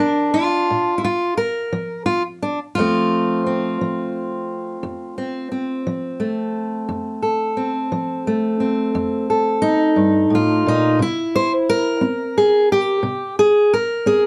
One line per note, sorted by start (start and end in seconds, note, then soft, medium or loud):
0.00 0.28 F3 medium
0.00 0.96 D4 medium
0.00 0.33 A#4 medium
0.34 1.03 F4 medium
0.70 1.32 A#2 medium
0.98 1.05 E4 medium
1.04 1.37 F4 medium
1.37 2.05 A#4 medium
1.72 2.35 F3 medium
2.06 2.22 F4 medium
2.42 2.58 D4 medium
2.75 3.39 F2 medium
2.75 3.81 F3 soft
2.75 6.19 A3 soft
2.75 6.19 F4 medium
2.80 3.46 C4 soft
3.46 5.17 C4 soft
3.81 4.42 F3 medium
4.83 5.45 F2 medium
5.18 5.51 C4 soft
5.52 7.56 C4 soft
5.87 6.48 F3 medium
6.20 8.25 A3 soft
6.89 7.50 F2 medium
7.22 9.28 A4 soft
7.57 8.60 C4 soft
7.92 8.53 F3 medium
8.27 11.00 A3 soft
8.60 9.61 C4 soft
8.95 9.56 F2 medium
9.30 10.32 A4 soft
9.62 10.65 D#4 medium
9.96 10.30 G2 medium
10.30 10.65 A2 medium
10.35 11.01 F4 medium
10.66 11.00 A#2 medium
10.66 11.01 D#4 medium
10.99 11.61 C3 medium
10.99 12.03 E4 medium
11.36 11.52 C5 medium
11.69 13.05 A#4 loud
12.01 12.63 C4 medium
12.38 12.71 G#4 medium
12.72 13.39 G4 medium
13.03 13.65 C3 medium
13.39 13.73 G#4 medium
13.73 14.27 A#4 medium
14.06 14.27 C4 medium
14.06 14.23 G#4 medium